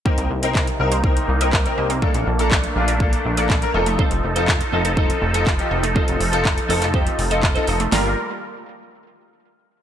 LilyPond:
<<
  \new Staff \with { instrumentName = "Synth arpeggio sound" } { \time 4/4 \key g \minor \tempo 4 = 122 bes16 r8. bes'16 r8 c''16 r8. ees''16 bes'16 r16 ees''16 c'16 | a16 r8. a'16 r8 bes'16 r8. d''16 a'16 r16 ees''16 a16 | f16 r8. f'16 r8 a'16 r8. ees''16 f'16 r16 ees''16 a16 | f16 r8. f'16 r8 a'16 r8. ees''16 f'16 r16 ees''16 a16 |
<g bes f'>8 r2. r8 | }
  \new Staff \with { instrumentName = "Grand piano" } { \time 4/4 \key g \minor <c' ees' bes'>8 r16 <c' ees' bes'>8 r16 <c' ees' bes'>16 r16 <c' ees' bes'>8 r16 <c' ees' bes'>16 r16 <c' ees' bes'>8 r16 | <bes d' a'>8 r16 <bes d' a'>8 r16 <bes d' f'>16 r16 <bes d' a'>8 r16 <bes d' a'>16 r16 <bes d' bes'>16 <ees' f' a'>8~ | <ees' f' a'>8 r16 <ees' f' a'>8 r16 <ees' f' a'>16 r16 <ees' f' a'>8 r16 <ees' f' a'>16 r16 <ees' f' g'>8 r16 | <ees' f' a'>8 r16 <ees' f' a'>8 r16 <ees' f' a'>16 r16 <ees' f' g'>8 r16 <ees' f' a'>16 r16 <ees' f' a'>8 r16 |
<f' g' bes'>8 r2. r8 | }
  \new Staff \with { instrumentName = "Clean electric guitar" } { \time 4/4 \key g \minor r1 | r1 | <c' ees' a' c''>8 r16 <c' ees' a' c''>16 r8 <c' ees' a' c''>16 <c' ees' a' c''>16 <c' ees' a' c''>8 r16 <c' ees' a' c''>16 r4 | <c' ees' a' c''>8 r16 <c' ees' a' c''>16 r8 <c' ees' a' c''>16 <c' ees' a' c''>16 <c' ees' a' c''>8 r16 <c' ees' a' c''>16 r16 <c' ees' a' c''>16 <c' ees' a' c''>16 r16 |
<bes d' f' bes'>16 r2. r8. | }
  \new Staff \with { instrumentName = "Supersaw synth" } { \time 4/4 \key g \minor << { <c ees'>1 | <a d'>2.~ <a d'>8 <f a'>8~ | <f a'>1~ | <f a'>1 |
<g f' bes'>8 r2. r8 | } \\ { bes1~ | bes2.~ bes8 ees'8~ | ees'1~ | ees'1 |
r1 | } >> }
  \new Staff \with { instrumentName = "Analog synth bass" } { \clef bass \time 4/4 \key g \minor r16 c,16 c,4 c,4 c,4 c,8~ | c,16 bes,,16 bes,,4 bes,,4 bes,,4 f,,8~ | f,,16 f,,16 f,,4 f,,4 f,,4 f,,8~ | f,,16 f,,16 f,,4 f,,4 f,,4 f,,8 |
g,,8 r2. r8 | }
  \new DrumStaff \with { instrumentName = "Drums" } \drummode { \time 4/4 bd16 hh8 hh16 <hc bd>16 hh8 hh16 bd16 hh8 hh16 <hc bd>16 hh8 hh16 | bd16 hh8 hh16 <hc bd>16 hh8 hh16 bd16 hh8 hh16 <hc bd>16 hh8 hh16 | bd16 hh8 hh16 <hc bd>16 hh8 hh16 bd16 hh8 hh16 <hc bd>16 hh8 hh16 | bd16 hh16 hho16 hh16 <hc bd>16 hh16 hho16 <hc hh>16 bd16 hh16 hho16 hh16 <hc bd>16 hh16 hho16 hh16 |
<hho sn>4 r4 r4 r4 | }
>>